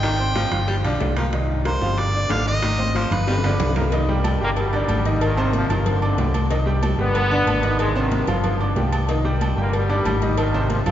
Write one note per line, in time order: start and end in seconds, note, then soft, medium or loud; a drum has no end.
0.00 0.46 G#1 loud
0.00 0.14 D#3 medium
0.00 0.20 D#3 medium
0.00 0.14 D#4 medium
0.00 0.14 D#5 medium
0.00 0.85 G5 loud
0.00 high bongo medium
0.00 high timbale medium
0.04 high conga soft
0.19 0.46 C4 medium
0.19 0.46 C5 medium
0.19 0.46 C6 medium
0.19 high conga soft
0.36 0.53 F3 medium
0.36 high bongo medium
0.36 high conga medium
0.36 high timbale medium
0.36 low timbale medium
0.51 0.82 G1 loud
0.51 0.79 F3 medium
0.51 0.79 F4 medium
0.51 0.79 F5 medium
0.51 high bongo soft
0.51 high conga soft
0.51 low conga medium
0.51 high timbale medium
0.68 0.77 G3 medium
0.68 high bongo medium
0.68 high conga soft
0.83 0.99 B1 medium
0.83 1.11 D3 medium
0.83 1.01 F3 medium
0.83 1.11 D4 medium
0.83 1.11 D5 medium
0.83 high bongo soft
0.83 high conga soft
0.83 high timbale medium
1.00 1.76 C2 medium
1.00 high bongo medium
1.00 low bongo medium
1.00 high conga medium
1.00 low timbale medium
1.16 1.26 F3 medium
1.16 1.30 A#3 medium
1.16 1.30 A#4 medium
1.16 1.30 A#5 medium
1.16 high bongo soft
1.16 high conga medium
1.16 high timbale medium
1.32 1.60 D#3 medium
1.32 1.60 D#4 medium
1.32 1.60 D#5 medium
1.32 high bongo medium
1.32 high conga soft
1.32 high timbale medium
1.49 high conga soft
1.65 1.79 A#3 medium
1.65 1.79 A#4 medium
1.65 2.00 C5 medium
1.65 1.79 A#5 medium
1.65 high bongo medium
1.65 high conga medium
1.65 high timbale medium
1.65 low timbale medium
1.81 2.26 G1 loud
1.81 2.08 C3 medium
1.81 2.08 F3 medium
1.81 2.08 F4 medium
1.81 2.08 F5 medium
1.81 high conga medium
1.98 2.33 D5 loud
1.98 high bongo medium
1.98 high conga soft
1.98 high timbale medium
2.14 2.41 D4 medium
2.14 2.41 D5 medium
2.14 2.41 D6 medium
2.14 high conga soft
2.30 3.05 G#1 medium
2.30 2.48 D3 medium
2.30 2.47 F5 loud
2.30 high bongo medium
2.30 low bongo medium
2.30 high conga medium
2.30 high timbale loud
2.30 low timbale medium
2.46 2.73 D#3 medium
2.46 2.73 D#4 medium
2.46 2.73 D#5 medium
2.46 2.98 D#5 loud
2.46 high conga soft
2.62 2.80 D#3 medium
2.62 high bongo medium
2.62 high conga medium
2.62 high timbale medium
2.78 3.05 C4 medium
2.78 3.05 C5 medium
2.78 3.06 C6 medium
2.78 high conga medium
2.95 3.12 F3 medium
2.95 3.15 C5 medium
2.95 high bongo medium
2.95 high conga medium
2.95 high timbale medium
2.95 low timbale medium
3.11 3.56 G1 loud
3.11 3.38 F3 medium
3.11 3.38 F4 medium
3.11 3.77 B4 loud
3.11 3.38 F5 medium
3.11 high bongo soft
3.11 low conga loud
3.11 high timbale medium
3.27 3.36 G3 medium
3.27 high bongo medium
3.27 low conga medium
3.27 high timbale loud
3.38 low bongo loud
3.44 3.70 D3 loud
3.44 3.61 F3 medium
3.44 3.71 D4 medium
3.44 3.71 D5 medium
3.44 low conga medium
3.44 high timbale medium
3.49 low bongo medium
3.59 4.35 C2 medium
3.59 low bongo loud
3.59 low conga medium
3.59 low timbale medium
3.70 low bongo medium
3.76 3.85 F3 medium
3.76 3.90 A#3 medium
3.76 3.90 A#4 medium
3.76 3.90 A#5 medium
3.76 low conga loud
3.76 low timbale medium
3.82 low bongo medium
3.92 4.06 D#3 medium
3.92 4.06 D#4 medium
3.92 4.06 D#5 medium
3.92 cowbell loud
3.92 high conga soft
3.92 low agogo medium
4.08 4.35 G3 medium
4.08 4.35 G4 medium
4.08 4.35 G5 medium
4.08 high conga soft
4.24 cowbell medium
4.24 high conga loud
4.24 low agogo loud
4.40 4.85 G1 loud
4.40 4.50 D3 medium
4.40 4.67 G3 medium
4.40 4.50 A#3 loud
4.40 4.68 G4 medium
4.40 4.68 G5 medium
4.40 high conga soft
4.56 5.18 B2 medium
4.56 5.18 G3 loud
4.56 cowbell loud
4.56 high conga soft
4.56 low agogo medium
4.73 4.99 D3 loud
4.73 5.00 D4 medium
4.73 5.00 D5 loud
4.73 high conga soft
4.73 low agogo medium
4.88 5.64 G#1 loud
4.88 cowbell medium
4.88 high conga loud
4.88 low agogo loud
5.05 5.32 D#3 medium
5.05 5.32 D#4 medium
5.05 5.32 D#5 medium
5.05 cowbell medium
5.21 5.55 G#2 medium
5.21 5.54 D#3 loud
5.21 cowbell loud
5.21 high conga soft
5.21 low agogo loud
5.37 5.64 C3 loud
5.37 5.64 C4 medium
5.37 5.64 C5 loud
5.37 low agogo medium
5.53 5.70 G#2 medium
5.53 5.69 F3 loud
5.53 cowbell medium
5.53 high conga loud
5.69 6.14 G1 loud
5.69 5.87 G2 medium
5.69 5.86 D#3 medium
5.69 5.96 F3 medium
5.69 5.97 F4 medium
5.69 5.97 F5 medium
5.69 cowbell medium
5.69 low conga medium
5.69 low agogo loud
5.86 6.02 F2 medium
5.86 6.01 D3 medium
5.86 cowbell loud
5.86 high conga soft
5.86 low conga medium
5.86 low agogo medium
6.02 6.34 F2 medium
6.02 6.33 D3 medium
6.02 6.15 D4 medium
6.02 6.15 D5 medium
6.02 6.16 D6 medium
6.02 high conga soft
6.02 low agogo medium
6.17 6.93 C2 loud
6.17 6.45 G3 medium
6.17 6.45 G4 medium
6.17 6.45 G5 medium
6.17 cowbell medium
6.17 high conga medium
6.17 low timbale medium
6.34 cowbell medium
6.34 high conga medium
6.34 low agogo loud
6.50 6.64 D#3 medium
6.50 6.64 D#4 medium
6.50 6.64 D#5 medium
6.50 cowbell loud
6.50 high conga soft
6.50 low agogo medium
6.66 6.93 G3 medium
6.66 6.93 G4 medium
6.66 6.93 G5 medium
6.66 high conga soft
6.83 cowbell medium
6.83 high conga loud
6.83 low agogo loud
6.98 7.43 G1 loud
6.98 7.76 D3 loud
6.98 7.25 G3 medium
6.98 7.76 B3 loud
6.98 7.25 G4 medium
6.98 7.25 G5 medium
6.98 high conga soft
7.15 cowbell loud
7.15 high conga soft
7.15 low agogo loud
7.31 7.57 D3 loud
7.31 7.58 D4 loud
7.31 7.58 D5 loud
7.31 high conga soft
7.31 low agogo medium
7.46 8.22 G#1 medium
7.46 cowbell medium
7.46 high conga medium
7.46 low agogo loud
7.63 7.90 D#3 medium
7.63 7.90 D#4 medium
7.63 7.90 D#5 medium
7.63 cowbell medium
7.79 7.96 C3 medium
7.79 7.96 G#3 loud
7.79 cowbell loud
7.79 high conga soft
7.79 low agogo loud
7.96 8.26 G2 medium
7.96 8.22 C3 loud
7.96 8.26 D#3 medium
7.96 8.22 C4 loud
7.96 8.22 C5 loud
7.96 high conga soft
7.96 low agogo medium
8.11 cowbell medium
8.11 high conga loud
8.27 8.73 G1 loud
8.27 8.93 B2 medium
8.27 8.54 F3 medium
8.27 8.93 F3 medium
8.27 8.54 F4 medium
8.27 8.55 F5 medium
8.27 cowbell medium
8.27 low conga loud
8.27 low agogo loud
8.44 cowbell loud
8.44 high conga soft
8.44 low conga medium
8.44 low agogo medium
8.60 8.73 D4 medium
8.60 8.74 D5 medium
8.60 8.74 D6 medium
8.60 high conga soft
8.60 low agogo medium
8.75 9.51 C2 loud
8.75 9.03 G3 medium
8.75 9.03 G4 medium
8.75 9.03 G5 medium
8.75 cowbell medium
8.75 high conga loud
8.92 cowbell medium
8.92 high conga medium
8.92 low agogo loud
9.08 9.22 D#3 medium
9.08 9.22 D#4 medium
9.08 9.22 D#5 medium
9.08 cowbell loud
9.08 high conga soft
9.08 low agogo medium
9.25 9.51 G3 medium
9.25 9.51 G4 medium
9.25 9.52 G5 medium
9.25 high conga soft
9.41 cowbell medium
9.41 high conga loud
9.41 low agogo loud
9.56 10.02 G1 loud
9.56 9.73 D3 medium
9.56 9.84 G3 medium
9.56 9.74 A#3 loud
9.56 9.84 G4 medium
9.56 9.84 G5 medium
9.56 high conga soft
9.73 10.35 B2 medium
9.73 10.35 G3 loud
9.73 cowbell loud
9.73 high conga soft
9.73 low agogo medium
9.89 10.16 D3 loud
9.89 10.16 D4 loud
9.89 10.16 D5 loud
9.89 high conga soft
9.89 low agogo medium
10.05 10.80 G#1 medium
10.05 cowbell medium
10.05 high conga medium
10.05 low timbale medium
10.05 low agogo loud
10.22 10.48 D#3 medium
10.22 10.48 D#4 medium
10.22 10.49 D#5 medium
10.22 cowbell medium
10.22 high conga medium
10.37 10.71 G#2 medium
10.37 10.71 D#3 loud
10.37 cowbell loud
10.37 high conga soft
10.37 low agogo loud
10.54 10.80 C3 loud
10.54 10.81 C4 loud
10.54 10.81 C5 loud
10.54 high conga soft
10.54 low agogo medium
10.70 10.79 G#2 medium
10.70 10.79 F3 medium
10.70 cowbell medium
10.70 high conga loud
10.85 10.91 G1 loud
10.85 10.91 G2 medium
10.85 10.91 D#3 medium
10.85 10.91 F3 medium
10.85 10.91 F4 medium
10.85 10.91 F5 medium
10.85 cowbell medium
10.85 low conga loud
10.85 low agogo loud